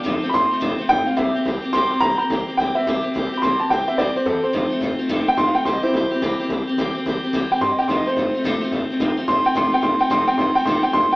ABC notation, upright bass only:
X:1
M:4/4
L:1/8
Q:"Swing" 1/4=215
K:F
V:1 name="Upright bass" clef=bass
F,,, z F,,, z F,,, z F,,, z | C,, z C,, z C,, z C,, z | C,, z C,, z C,, z C,, z | C,, z C,, z C,, z E,, z |
F,,, z F,,, z F,,, z F,,, z | C,, z C,, z C,, z C,, z | C,, z C,, z C,, z G,, z | F,,, z F,,, z F,,, z F,,, z |
F,,, z F,,, z F,,, z F,,, z | F,,, z F,,, z F,,, z F,,, z |]